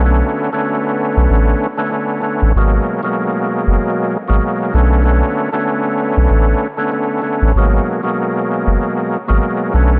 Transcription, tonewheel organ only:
X:1
M:4/4
L:1/16
Q:"Swing 16ths" 1/4=96
K:Blyd
V:1 name="Tonewheel organ"
[=D,=A,B,C]3 [D,A,B,C]6- [D,A,B,C] z [D,A,B,C] [D,A,B,C]2 [D,A,B,C]2 | [B,,F,G,A,]3 [B,,F,G,A,]6- [B,,F,G,A,] z [B,,F,G,A,]3 [=D,=A,B,C]2 | [=D,=A,B,C]3 [D,A,B,C]6- [D,A,B,C] z [D,A,B,C] [D,A,B,C]2 [D,A,B,C]2 | [B,,F,G,A,]3 [B,,F,G,A,]6- [B,,F,G,A,] z [B,,F,G,A,]3 [=D,=A,B,C]2 |]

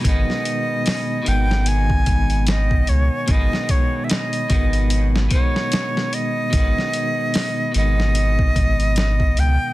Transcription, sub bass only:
X:1
M:4/4
L:1/8
Q:"Swing 16ths" 1/4=74
K:G#m
V:1 name="Sub bass" clef=bass
G,,, z2 G,,,2 G,,,2 C,, | G,,, z2 G,,,2 z3 | G,,, z2 G,,,2 G,,,2 C,, |]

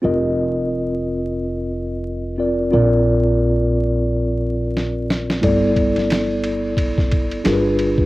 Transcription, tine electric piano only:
X:1
M:4/4
L:1/8
Q:"Swing 16ths" 1/4=89
K:Bbmix
V:1 name="Tine electric piano"
[CFBe]6- [CFBe] [CFBd] | [CFBd]8 | [=A,=B,=E=Ad]6 [DF_A_B=B]2 |]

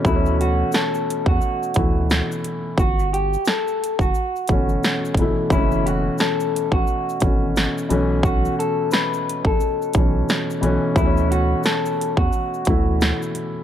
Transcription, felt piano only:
X:1
M:4/4
L:1/16
Q:"Swing 16ths" 1/4=88
K:D
V:1 name="Felt piano"
[B,,E,A,B,C]4- [B,,E,A,B,C] z4 z [B,,E,A,E]4- [B,,E,A,E] z | z8 z2 [B,,E,A,C]2 z2 [B,,E,A,E]2 | [B,,E,^G,A,C]4- [B,,E,G,A,C] z4 z [B,,E,A,C]4 [B,,E,A,C]2- | [B,,E,A,C]4 z6 [B,,E,A,C]2 z2 [B,,E,A,C]2 |
[B,,E,A,B,C]4- [B,,E,A,B,C] z4 z [B,,E,A,E]4- [B,,E,A,E] z |]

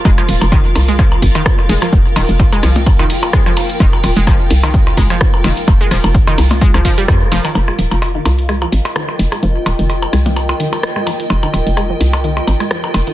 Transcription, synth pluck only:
X:1
M:4/4
L:1/16
Q:"Swing 16ths" 1/4=128
K:Cphr
V:1 name="Synth pluck" clef=bass
A, F, z2 E, z2 A, F, z2 E, z2 A, F, | z2 E, z2 A, F, z2 E, z2 A, F, z2 | E, z2 A, F, z2 E, z2 A, F, z2 E, z | z A, F, z2 E, z2 A, F, F, G, G, z F, E, |
z A, F, z2 E, z2 A, F, z2 E, z2 A, | F, z2 E, z2 A, F, z2 E, z2 A, F, z | z E, z2 A, F, z2 E, z2 A, F, z2 E, |]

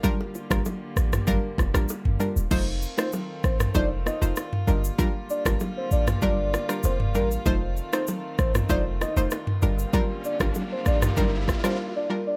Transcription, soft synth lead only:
X:1
M:4/4
L:1/16
Q:1/4=97
K:Gm
V:1 name="Soft synth lead"
z16 | z3 c z2 c z d z e z4 z | z2 d z2 c d z d3 z c z B z | z3 c z2 c z d z e z4 z |
z2 d z2 c d z B z2 c z d z d |]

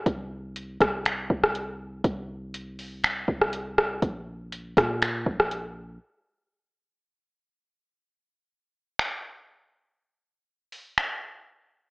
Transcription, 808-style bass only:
X:1
M:4/4
L:1/8
Q:1/4=121
K:Cdor
V:1 name="808-style bass" clef=bass
C,,3 C,,2 C,,3 | C,,4- C,, C,,3 | B,,,3 B,,2 B,,,3 | z8 |
z8 | z8 |]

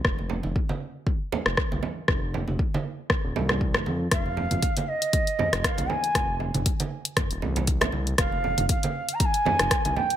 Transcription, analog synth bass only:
X:1
M:4/4
L:1/16
Q:"Swing 16ths" 1/4=118
K:Fm
V:1 name="Analog synth bass" clef=bass
F,,,3 F,,, z6 z F,,, z C,, z2 | F,,,3 F,,, z4 z E,,, C,,2 C,, F,,, F,,2 | F,,,3 F,,, z6 z F,,, z C,, z2 | F,,,3 F,,, z4 z E,,, C,,4 C,,2 |
F,,,3 F,,, z6 z F,,, z C,, z2 |]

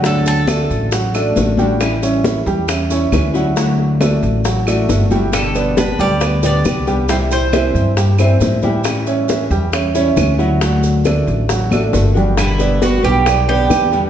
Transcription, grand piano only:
X:1
M:4/4
L:1/8
Q:1/4=136
K:G
V:1 name="Grand piano"
[F,Ff]2 [A,Ad]2 [F,Ff] [A,Ad]2 [G,Gg]- | [G,Gg] [^C^ce]2 [G,Gg] [Cce] [Cce]2 [F,Ff] | [F,Ff]2 [A,Ad]2 [F,Ff] [A,Ad]2 [G,Gg]- | [G,Gg] [B,Bd]2 [G,Gg] [B,Bd] [B,Bd]2 [G,Gg] |
[G,Gg]2 [Cce]2 [G,Gg] [Cce]2 [G,Gg]- | [G,Gg] [^C^ce]2 [G,Gg] [Cce] [Cce]2 [F,Ff] | [F,Ff]2 [A,Ad]2 [F,Ff] [A,Ad]2 [G,Gg] | z [B,Bd]2 [G,Gg] [B,Bd] [B,Bd]2 [G,Gg] |]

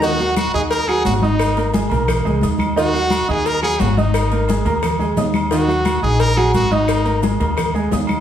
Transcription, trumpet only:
X:1
M:4/4
L:1/8
Q:1/4=175
K:Ebm
V:1 name="Trumpet"
G2 G A B A G E- | E2 z6 | G3 A B A G E- | E2 z6 |
G3 A B A G E- | E2 z6 |]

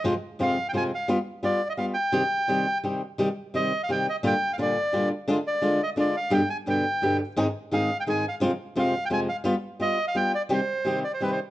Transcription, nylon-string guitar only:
X:1
M:3/4
L:1/16
Q:1/4=172
K:Cm
V:1 name="Nylon-string guitar" clef=bass
[F,,C,F,A,CF] z3 [F,,C,F,A,CF]2 z2 [F,,C,F,A,CF]2 z2 | [G,=B,F] z3 [G,B,F]2 z2 [G,B,F]2 z2 | [C,E,G,CG] z3 [C,E,G,CG]2 z2 [C,E,G,CG]2 z2 | [C,E,G,CG] z3 [C,E,G,CG]2 z2 [C,E,G,CG]2 z2 |
[B,,D,G,DF] z3 [B,,D,G,DF]2 z2 [B,,D,G,DF]2 z2 | [D,A,DF] z3 [D,A,DF]2 z2 [D,A,DF]2 z2 | [G,,=B,,D,G,=B,G] z3 [G,,B,,D,G,B,G]2 z2 [G,,B,,D,G,B,G]2 z2 | [A,,E,A,CEA] z3 [A,,E,A,CEA]2 z2 [A,,E,A,CEA]2 z2 |
[F,,C,F,A,CF] z3 [F,,C,F,A,CF]2 z2 [F,,C,F,A,CF]2 z2 | [G,=B,F] z3 [G,B,F]2 z2 [G,B,F]2 z2 | [C,E,G,CG] z3 [C,E,G,CG]2 z2 [C,E,G,CG]2 z2 |]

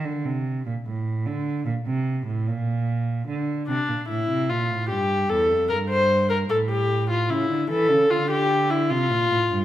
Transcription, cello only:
X:1
M:4/4
L:1/16
Q:1/4=75
K:Dphr
V:1 name="Cello" clef=bass
D, C,2 B,, A,,2 D,2 B,, C,2 A,, B,,4 | D,2 C, B,, A,, C, B,, A,, G,,2 =E,, F,, G,,4 | A,,4 ^C, D, =E, C, D,4 =C, B,, A,, G,, |]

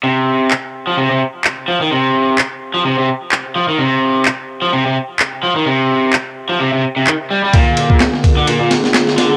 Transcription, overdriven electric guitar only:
X:1
M:4/4
L:1/16
Q:"Swing 16ths" 1/4=128
K:Bbmix
V:1 name="Overdriven electric guitar" clef=bass
C,4 z3 F, C, C, z4 F, E, | C,4 z3 F, C, C, z4 F, E, | C,4 z3 F, C, C, z4 F, E, | C,4 z3 F, C, C, z C, E, z G, G, |
B,,4 z3 D, B,, B,, z4 D, D, |]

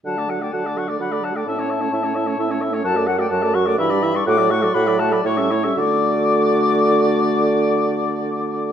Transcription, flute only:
X:1
M:3/4
L:1/16
Q:1/4=125
K:D
V:1 name="Flute"
a2 f g a2 c' d' b2 a g | a8- a2 z2 | a2 f g a2 c' d' b3 c' | d'2 c'2 b2 a b c'4 |
d'12- | d'12 |]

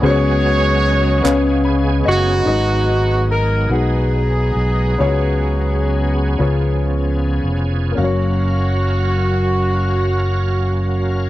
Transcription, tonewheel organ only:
X:1
M:6/8
L:1/8
Q:3/8=45
K:F#
V:1 name="Tonewheel organ"
z4 g c | z6 | z6 | z6 |]
V:2 name="Tonewheel organ"
[F,G,B,CG]3 [C,G,B,CG]3 | [F,A,B,DG]6 | [F,B,CG]3 [E,B,CG]3 | [F,CAe]6 |]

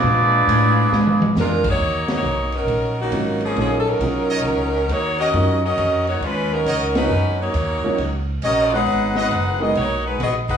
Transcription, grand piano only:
X:1
M:4/4
L:1/8
Q:"Swing" 1/4=136
K:Ebm
V:1 name="Grand piano"
z8 | z6 [G,DEFB] z | [G,DEFB] z [G,DEFA]3 z3 | [G,DEFB] z6 [G,DEFB] |
z3 [G,DEFB] z3 [A,CEGd]- | [A,CEGd]2 z [A,CEGB] z4 |]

